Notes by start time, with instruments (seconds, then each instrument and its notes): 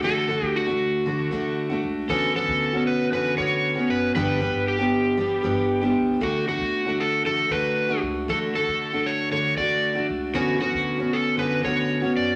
0.02 upright bass D2, steel-string acoustic guitar D3 A3 D4 F#4, electric slide guitar A4
0.28 steel-string acoustic guitar D3 A3 D4 F#4
0.42 upright bass D2
0.46 electric slide guitar G4
0.56 electric slide guitar F#4
0.67 steel-string acoustic guitar A3 D4 F#4
1.06 steel-string acoustic guitar D3 A3 D4 F#4
1.31 upright bass D2, steel-string acoustic guitar D3 A3 D4 F#4
1.70 steel-string acoustic guitar A3 D4 F#4
1.84 upright bass C#2
2.09 upright bass D2, steel-string acoustic guitar D3 B3 C#4 F#4, electric slide guitar A4
2.34 steel-string acoustic guitar D3 B3 C#4 F#4, electric slide guitar A4
2.48 upright bass D2
2.73 steel-string acoustic guitar B3 C#4 F#4
2.87 electric slide guitar B4
3.11 steel-string acoustic guitar D3 B3 C#4 F#4, electric slide guitar B4
3.37 upright bass D2, steel-string acoustic guitar D3 B3 C#4 F#4, electric slide guitar C#5
3.76 steel-string acoustic guitar B3 C#4 F#4
3.89 upright bass F#1, electric slide guitar B4
4.15 upright bass G1, steel-string acoustic guitar G2 D3 G3 B3 D4 G4, electric slide guitar B4
4.40 steel-string acoustic guitar G3 B3 D4 G4
4.54 upright bass G1
4.68 electric slide guitar G4
4.78 steel-string acoustic guitar G3 B3 D4 G4
5.17 steel-string acoustic guitar G3 B3 D4 G4
5.43 upright bass G1, steel-string acoustic guitar G3 B3 D4 G4
5.81 steel-string acoustic guitar G3 B3 D4 G4
5.96 upright bass C#2
6.21 upright bass D2, steel-string acoustic guitar D3 A3 D4 F#4, electric slide guitar F#4
6.47 steel-string acoustic guitar D3 A3 D4 F#4, electric slide guitar F#4
6.61 upright bass D2
6.85 steel-string acoustic guitar A3 D4 F#4
7.00 electric slide guitar A4
7.24 steel-string acoustic guitar D3 A3 D4 F#4, electric slide guitar A4
7.50 upright bass D2, steel-string acoustic guitar D3 A3 D4 F#4, electric slide guitar B4
7.89 steel-string acoustic guitar A3 D4 F#4
8.02 upright bass C#2
8.28 upright bass D2, steel-string acoustic guitar D3 A3 D4 F#4, electric slide guitar A4
8.54 steel-string acoustic guitar D3 A3 D4 F#4, electric slide guitar A4
8.67 upright bass D2
8.92 steel-string acoustic guitar A3 D4 F#4
9.06 electric slide guitar C#5
9.31 steel-string acoustic guitar D3 A3 D4 F#4, electric slide guitar C#5
9.57 upright bass D2, steel-string acoustic guitar D3 A3 D4 F#4, electric slide guitar D5
9.95 steel-string acoustic guitar A3 D4 F#4
10.09 upright bass C#2
10.34 upright bass D2, steel-string acoustic guitar D3 B3 C#4 F#4, electric slide guitar F#4
10.60 steel-string acoustic guitar D3 B3 C#4 F#4, electric slide guitar F#4
10.74 upright bass D2
10.98 steel-string acoustic guitar B3 C#4 F#4
11.13 electric slide guitar A4
11.37 steel-string acoustic guitar D3 B3 C#4 F#4, electric slide guitar B4
11.63 upright bass D2, steel-string acoustic guitar D3 B3 C#4 F#4, electric slide guitar C#5
12.02 steel-string acoustic guitar B3 C#4 F#4
12.16 upright bass F#1, electric slide guitar D5